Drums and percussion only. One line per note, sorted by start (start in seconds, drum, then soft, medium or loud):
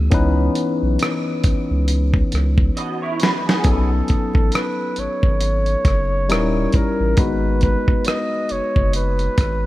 0.12 kick loud
0.12 closed hi-hat medium
0.55 closed hi-hat medium
0.99 cross-stick medium
0.99 closed hi-hat medium
1.44 kick medium
1.44 closed hi-hat medium
1.88 closed hi-hat medium
2.14 kick medium
2.32 cross-stick soft
2.32 closed hi-hat medium
2.58 kick medium
2.77 closed hi-hat medium
3.20 snare medium
3.20 closed hi-hat medium
3.49 snare medium
3.64 kick medium
3.64 closed hi-hat medium
4.08 kick medium
4.08 closed hi-hat medium
4.35 kick medium
4.52 cross-stick medium
4.52 closed hi-hat medium
4.96 closed hi-hat soft
5.23 kick medium
5.41 closed hi-hat medium
5.66 closed hi-hat soft
5.85 kick medium
5.85 cross-stick soft
5.85 closed hi-hat medium
6.30 cross-stick medium
6.30 closed hi-hat medium
6.72 kick medium
6.72 closed hi-hat medium
7.17 kick loud
7.17 closed hi-hat medium
7.61 kick medium
7.61 closed hi-hat medium
7.88 kick medium
8.05 cross-stick medium
8.05 closed hi-hat medium
8.49 closed hi-hat medium
8.76 kick medium
8.93 closed hi-hat medium
9.19 closed hi-hat soft
9.38 kick medium
9.38 cross-stick soft
9.38 closed hi-hat medium